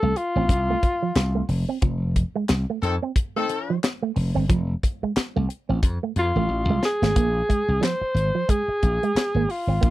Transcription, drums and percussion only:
0, 0, Header, 1, 2, 480
1, 0, Start_track
1, 0, Tempo, 666667
1, 1315, Time_signature, 4, 2, 24, 8
1, 7129, End_track
2, 0, Start_track
2, 0, Title_t, "Drums"
2, 116, Note_on_c, 9, 42, 76
2, 188, Note_off_c, 9, 42, 0
2, 354, Note_on_c, 9, 36, 94
2, 360, Note_on_c, 9, 42, 99
2, 426, Note_off_c, 9, 36, 0
2, 432, Note_off_c, 9, 42, 0
2, 597, Note_on_c, 9, 36, 84
2, 597, Note_on_c, 9, 42, 77
2, 669, Note_off_c, 9, 36, 0
2, 669, Note_off_c, 9, 42, 0
2, 831, Note_on_c, 9, 42, 76
2, 837, Note_on_c, 9, 38, 126
2, 837, Note_on_c, 9, 39, 88
2, 903, Note_off_c, 9, 42, 0
2, 909, Note_off_c, 9, 38, 0
2, 909, Note_off_c, 9, 39, 0
2, 1072, Note_on_c, 9, 46, 68
2, 1144, Note_off_c, 9, 46, 0
2, 1311, Note_on_c, 9, 42, 99
2, 1313, Note_on_c, 9, 36, 107
2, 1383, Note_off_c, 9, 42, 0
2, 1385, Note_off_c, 9, 36, 0
2, 1556, Note_on_c, 9, 36, 86
2, 1556, Note_on_c, 9, 42, 90
2, 1628, Note_off_c, 9, 36, 0
2, 1628, Note_off_c, 9, 42, 0
2, 1791, Note_on_c, 9, 42, 85
2, 1794, Note_on_c, 9, 38, 122
2, 1794, Note_on_c, 9, 39, 98
2, 1863, Note_off_c, 9, 42, 0
2, 1866, Note_off_c, 9, 38, 0
2, 1866, Note_off_c, 9, 39, 0
2, 2039, Note_on_c, 9, 42, 74
2, 2111, Note_off_c, 9, 42, 0
2, 2274, Note_on_c, 9, 36, 96
2, 2276, Note_on_c, 9, 42, 109
2, 2346, Note_off_c, 9, 36, 0
2, 2348, Note_off_c, 9, 42, 0
2, 2516, Note_on_c, 9, 42, 80
2, 2588, Note_off_c, 9, 42, 0
2, 2758, Note_on_c, 9, 42, 86
2, 2764, Note_on_c, 9, 38, 119
2, 2764, Note_on_c, 9, 39, 104
2, 2830, Note_off_c, 9, 42, 0
2, 2836, Note_off_c, 9, 38, 0
2, 2836, Note_off_c, 9, 39, 0
2, 2998, Note_on_c, 9, 46, 75
2, 3070, Note_off_c, 9, 46, 0
2, 3237, Note_on_c, 9, 36, 117
2, 3242, Note_on_c, 9, 42, 96
2, 3309, Note_off_c, 9, 36, 0
2, 3314, Note_off_c, 9, 42, 0
2, 3480, Note_on_c, 9, 36, 89
2, 3487, Note_on_c, 9, 42, 83
2, 3552, Note_off_c, 9, 36, 0
2, 3559, Note_off_c, 9, 42, 0
2, 3717, Note_on_c, 9, 42, 82
2, 3721, Note_on_c, 9, 38, 117
2, 3721, Note_on_c, 9, 39, 93
2, 3789, Note_off_c, 9, 42, 0
2, 3793, Note_off_c, 9, 38, 0
2, 3793, Note_off_c, 9, 39, 0
2, 3961, Note_on_c, 9, 42, 69
2, 4033, Note_off_c, 9, 42, 0
2, 4196, Note_on_c, 9, 36, 99
2, 4200, Note_on_c, 9, 42, 109
2, 4268, Note_off_c, 9, 36, 0
2, 4272, Note_off_c, 9, 42, 0
2, 4435, Note_on_c, 9, 42, 81
2, 4507, Note_off_c, 9, 42, 0
2, 4916, Note_on_c, 9, 38, 91
2, 4988, Note_off_c, 9, 38, 0
2, 5061, Note_on_c, 9, 38, 95
2, 5133, Note_off_c, 9, 38, 0
2, 5156, Note_on_c, 9, 36, 111
2, 5156, Note_on_c, 9, 42, 107
2, 5228, Note_off_c, 9, 36, 0
2, 5228, Note_off_c, 9, 42, 0
2, 5398, Note_on_c, 9, 36, 80
2, 5405, Note_on_c, 9, 42, 81
2, 5470, Note_off_c, 9, 36, 0
2, 5477, Note_off_c, 9, 42, 0
2, 5638, Note_on_c, 9, 42, 86
2, 5642, Note_on_c, 9, 38, 115
2, 5642, Note_on_c, 9, 39, 88
2, 5710, Note_off_c, 9, 42, 0
2, 5714, Note_off_c, 9, 38, 0
2, 5714, Note_off_c, 9, 39, 0
2, 5880, Note_on_c, 9, 42, 74
2, 5952, Note_off_c, 9, 42, 0
2, 6113, Note_on_c, 9, 36, 95
2, 6119, Note_on_c, 9, 42, 104
2, 6185, Note_off_c, 9, 36, 0
2, 6191, Note_off_c, 9, 42, 0
2, 6356, Note_on_c, 9, 36, 68
2, 6356, Note_on_c, 9, 42, 73
2, 6428, Note_off_c, 9, 36, 0
2, 6428, Note_off_c, 9, 42, 0
2, 6503, Note_on_c, 9, 42, 43
2, 6575, Note_off_c, 9, 42, 0
2, 6598, Note_on_c, 9, 42, 78
2, 6604, Note_on_c, 9, 38, 109
2, 6604, Note_on_c, 9, 39, 88
2, 6670, Note_off_c, 9, 42, 0
2, 6676, Note_off_c, 9, 38, 0
2, 6676, Note_off_c, 9, 39, 0
2, 6838, Note_on_c, 9, 46, 72
2, 6910, Note_off_c, 9, 46, 0
2, 7076, Note_on_c, 9, 36, 108
2, 7081, Note_on_c, 9, 42, 90
2, 7129, Note_off_c, 9, 36, 0
2, 7129, Note_off_c, 9, 42, 0
2, 7129, End_track
0, 0, End_of_file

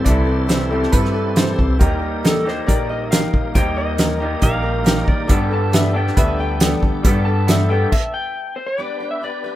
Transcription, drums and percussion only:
0, 0, Header, 1, 2, 480
1, 0, Start_track
1, 0, Tempo, 436364
1, 68, Time_signature, 4, 2, 24, 8
1, 10513, End_track
2, 0, Start_track
2, 0, Title_t, "Drums"
2, 62, Note_on_c, 9, 42, 70
2, 65, Note_on_c, 9, 36, 95
2, 172, Note_off_c, 9, 42, 0
2, 175, Note_off_c, 9, 36, 0
2, 540, Note_on_c, 9, 42, 64
2, 549, Note_on_c, 9, 38, 99
2, 650, Note_off_c, 9, 42, 0
2, 659, Note_off_c, 9, 38, 0
2, 913, Note_on_c, 9, 38, 30
2, 1017, Note_on_c, 9, 42, 66
2, 1023, Note_off_c, 9, 38, 0
2, 1024, Note_on_c, 9, 36, 89
2, 1127, Note_off_c, 9, 42, 0
2, 1134, Note_off_c, 9, 36, 0
2, 1153, Note_on_c, 9, 38, 30
2, 1263, Note_off_c, 9, 38, 0
2, 1496, Note_on_c, 9, 42, 67
2, 1506, Note_on_c, 9, 38, 117
2, 1606, Note_off_c, 9, 42, 0
2, 1616, Note_off_c, 9, 38, 0
2, 1747, Note_on_c, 9, 36, 77
2, 1857, Note_off_c, 9, 36, 0
2, 1985, Note_on_c, 9, 42, 66
2, 1989, Note_on_c, 9, 36, 113
2, 2095, Note_off_c, 9, 42, 0
2, 2099, Note_off_c, 9, 36, 0
2, 2470, Note_on_c, 9, 42, 67
2, 2480, Note_on_c, 9, 38, 112
2, 2580, Note_off_c, 9, 42, 0
2, 2590, Note_off_c, 9, 38, 0
2, 2727, Note_on_c, 9, 38, 29
2, 2837, Note_off_c, 9, 38, 0
2, 2953, Note_on_c, 9, 36, 98
2, 2957, Note_on_c, 9, 42, 67
2, 3063, Note_off_c, 9, 36, 0
2, 3067, Note_off_c, 9, 42, 0
2, 3430, Note_on_c, 9, 42, 70
2, 3440, Note_on_c, 9, 38, 110
2, 3540, Note_off_c, 9, 42, 0
2, 3550, Note_off_c, 9, 38, 0
2, 3671, Note_on_c, 9, 36, 85
2, 3781, Note_off_c, 9, 36, 0
2, 3907, Note_on_c, 9, 42, 61
2, 3909, Note_on_c, 9, 36, 103
2, 4017, Note_off_c, 9, 42, 0
2, 4019, Note_off_c, 9, 36, 0
2, 4381, Note_on_c, 9, 42, 64
2, 4391, Note_on_c, 9, 38, 104
2, 4491, Note_off_c, 9, 42, 0
2, 4501, Note_off_c, 9, 38, 0
2, 4858, Note_on_c, 9, 42, 60
2, 4866, Note_on_c, 9, 36, 95
2, 4968, Note_off_c, 9, 42, 0
2, 4976, Note_off_c, 9, 36, 0
2, 5345, Note_on_c, 9, 42, 71
2, 5355, Note_on_c, 9, 38, 114
2, 5455, Note_off_c, 9, 42, 0
2, 5465, Note_off_c, 9, 38, 0
2, 5585, Note_on_c, 9, 36, 91
2, 5695, Note_off_c, 9, 36, 0
2, 5821, Note_on_c, 9, 42, 73
2, 5825, Note_on_c, 9, 36, 103
2, 5931, Note_off_c, 9, 42, 0
2, 5935, Note_off_c, 9, 36, 0
2, 6305, Note_on_c, 9, 42, 69
2, 6315, Note_on_c, 9, 38, 103
2, 6415, Note_off_c, 9, 42, 0
2, 6425, Note_off_c, 9, 38, 0
2, 6681, Note_on_c, 9, 38, 33
2, 6786, Note_on_c, 9, 42, 70
2, 6788, Note_on_c, 9, 36, 107
2, 6791, Note_off_c, 9, 38, 0
2, 6896, Note_off_c, 9, 42, 0
2, 6898, Note_off_c, 9, 36, 0
2, 7262, Note_on_c, 9, 42, 78
2, 7272, Note_on_c, 9, 38, 123
2, 7372, Note_off_c, 9, 42, 0
2, 7382, Note_off_c, 9, 38, 0
2, 7509, Note_on_c, 9, 36, 83
2, 7619, Note_off_c, 9, 36, 0
2, 7749, Note_on_c, 9, 42, 72
2, 7751, Note_on_c, 9, 36, 114
2, 7859, Note_off_c, 9, 42, 0
2, 7861, Note_off_c, 9, 36, 0
2, 8229, Note_on_c, 9, 42, 71
2, 8239, Note_on_c, 9, 38, 113
2, 8339, Note_off_c, 9, 42, 0
2, 8349, Note_off_c, 9, 38, 0
2, 8715, Note_on_c, 9, 36, 89
2, 8715, Note_on_c, 9, 49, 83
2, 8825, Note_off_c, 9, 36, 0
2, 8825, Note_off_c, 9, 49, 0
2, 10513, End_track
0, 0, End_of_file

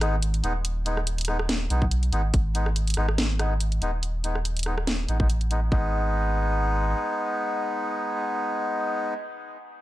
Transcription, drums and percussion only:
0, 0, Header, 1, 2, 480
1, 0, Start_track
1, 0, Tempo, 422535
1, 735, Time_signature, 4, 2, 24, 8
1, 11150, End_track
2, 0, Start_track
2, 0, Title_t, "Drums"
2, 16, Note_on_c, 9, 37, 74
2, 16, Note_on_c, 9, 42, 55
2, 129, Note_off_c, 9, 37, 0
2, 129, Note_off_c, 9, 42, 0
2, 256, Note_on_c, 9, 42, 82
2, 369, Note_off_c, 9, 42, 0
2, 386, Note_on_c, 9, 42, 38
2, 496, Note_off_c, 9, 42, 0
2, 496, Note_on_c, 9, 42, 54
2, 610, Note_off_c, 9, 42, 0
2, 735, Note_on_c, 9, 42, 80
2, 849, Note_off_c, 9, 42, 0
2, 976, Note_on_c, 9, 42, 55
2, 1089, Note_off_c, 9, 42, 0
2, 1105, Note_on_c, 9, 37, 50
2, 1215, Note_on_c, 9, 42, 78
2, 1219, Note_off_c, 9, 37, 0
2, 1328, Note_off_c, 9, 42, 0
2, 1345, Note_on_c, 9, 42, 50
2, 1375, Note_off_c, 9, 42, 0
2, 1375, Note_on_c, 9, 42, 65
2, 1417, Note_off_c, 9, 42, 0
2, 1417, Note_on_c, 9, 42, 82
2, 1455, Note_on_c, 9, 37, 49
2, 1531, Note_off_c, 9, 42, 0
2, 1568, Note_off_c, 9, 37, 0
2, 1584, Note_on_c, 9, 37, 68
2, 1694, Note_on_c, 9, 38, 116
2, 1694, Note_on_c, 9, 42, 81
2, 1697, Note_off_c, 9, 37, 0
2, 1807, Note_off_c, 9, 38, 0
2, 1807, Note_off_c, 9, 42, 0
2, 1935, Note_on_c, 9, 42, 51
2, 2048, Note_off_c, 9, 42, 0
2, 2065, Note_on_c, 9, 36, 102
2, 2174, Note_on_c, 9, 42, 80
2, 2179, Note_off_c, 9, 36, 0
2, 2288, Note_off_c, 9, 42, 0
2, 2304, Note_on_c, 9, 42, 36
2, 2414, Note_off_c, 9, 42, 0
2, 2414, Note_on_c, 9, 42, 54
2, 2528, Note_off_c, 9, 42, 0
2, 2655, Note_on_c, 9, 36, 119
2, 2655, Note_on_c, 9, 42, 74
2, 2768, Note_off_c, 9, 42, 0
2, 2769, Note_off_c, 9, 36, 0
2, 2895, Note_on_c, 9, 42, 52
2, 3009, Note_off_c, 9, 42, 0
2, 3025, Note_on_c, 9, 37, 48
2, 3135, Note_on_c, 9, 42, 78
2, 3138, Note_off_c, 9, 37, 0
2, 3249, Note_off_c, 9, 42, 0
2, 3266, Note_on_c, 9, 42, 49
2, 3296, Note_off_c, 9, 42, 0
2, 3296, Note_on_c, 9, 42, 62
2, 3339, Note_off_c, 9, 42, 0
2, 3339, Note_on_c, 9, 42, 77
2, 3376, Note_on_c, 9, 37, 48
2, 3453, Note_off_c, 9, 42, 0
2, 3489, Note_off_c, 9, 37, 0
2, 3505, Note_on_c, 9, 37, 70
2, 3615, Note_on_c, 9, 38, 117
2, 3615, Note_on_c, 9, 42, 76
2, 3619, Note_off_c, 9, 37, 0
2, 3729, Note_off_c, 9, 38, 0
2, 3729, Note_off_c, 9, 42, 0
2, 3856, Note_on_c, 9, 37, 67
2, 3856, Note_on_c, 9, 42, 50
2, 3970, Note_off_c, 9, 37, 0
2, 3970, Note_off_c, 9, 42, 0
2, 4095, Note_on_c, 9, 42, 77
2, 4209, Note_off_c, 9, 42, 0
2, 4225, Note_on_c, 9, 42, 35
2, 4337, Note_off_c, 9, 42, 0
2, 4337, Note_on_c, 9, 42, 50
2, 4450, Note_off_c, 9, 42, 0
2, 4576, Note_on_c, 9, 42, 68
2, 4690, Note_off_c, 9, 42, 0
2, 4817, Note_on_c, 9, 42, 51
2, 4930, Note_off_c, 9, 42, 0
2, 4946, Note_on_c, 9, 37, 46
2, 5057, Note_on_c, 9, 42, 70
2, 5060, Note_off_c, 9, 37, 0
2, 5171, Note_off_c, 9, 42, 0
2, 5187, Note_on_c, 9, 42, 46
2, 5217, Note_off_c, 9, 42, 0
2, 5217, Note_on_c, 9, 42, 58
2, 5260, Note_off_c, 9, 42, 0
2, 5260, Note_on_c, 9, 42, 73
2, 5296, Note_on_c, 9, 37, 47
2, 5373, Note_off_c, 9, 42, 0
2, 5410, Note_off_c, 9, 37, 0
2, 5426, Note_on_c, 9, 37, 66
2, 5537, Note_on_c, 9, 38, 113
2, 5537, Note_on_c, 9, 42, 71
2, 5539, Note_off_c, 9, 37, 0
2, 5650, Note_off_c, 9, 38, 0
2, 5650, Note_off_c, 9, 42, 0
2, 5777, Note_on_c, 9, 42, 47
2, 5890, Note_off_c, 9, 42, 0
2, 5906, Note_on_c, 9, 36, 106
2, 6016, Note_on_c, 9, 42, 73
2, 6020, Note_off_c, 9, 36, 0
2, 6130, Note_off_c, 9, 42, 0
2, 6146, Note_on_c, 9, 42, 33
2, 6256, Note_off_c, 9, 42, 0
2, 6256, Note_on_c, 9, 42, 49
2, 6370, Note_off_c, 9, 42, 0
2, 6496, Note_on_c, 9, 36, 108
2, 6610, Note_off_c, 9, 36, 0
2, 11150, End_track
0, 0, End_of_file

